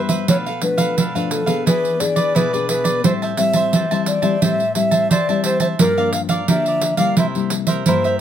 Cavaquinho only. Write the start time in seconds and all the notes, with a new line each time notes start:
0.09 B4 C5 E5
0.29 D4 A4 B4 F5
0.46 A4 B4 F5
0.62 muted cavaquinho stroke
0.78 A4 B4 F5
0.97 D4 A4 B4 F5
1.15 A4 B4 F5
1.46 A4 B4 F5
1.66 E4 G#4 B4 D5
2.00 muted cavaquinho stroke
2.16 G#4 B4 D5
2.35 E4 G#4 B4 D5
2.53 G#4 B4 D5
2.69 E4 G#4 B4 D5
2.84 G#4 B4 D5
3.04 G4 C5 E5 A5
3.22 C5 E5 A5
3.38 muted cavaquinho stroke
3.54 C5 E5 A5
3.73 G4 C5 E5 A5
3.91 C5 E5 A5
4.22 C5 E5 A5
4.42 G4 C5 E5 A5
4.75 muted cavaquinho stroke
4.91 C5 E5 A5
5.10 G4 C5 E5 A5
5.29 C5 E5 A5
5.44 G4 C5 E5 A5
5.60 C5 E5 A5
5.80 G4 A#4 D5 F5
5.98 A#4 D5 F5
6.13 muted cavaquinho stroke
6.29 A#4 D5 F5
6.48 G4 A#4 D5 F5
6.68 A#4 D5
6.97 A#4 D5 F5
7.17 E4 A#4 C5 E5
7.51 muted cavaquinho stroke
7.67 A#4 C5 E5
7.87 E4 A#4 C5 E5
8.05 A#4 C5 E5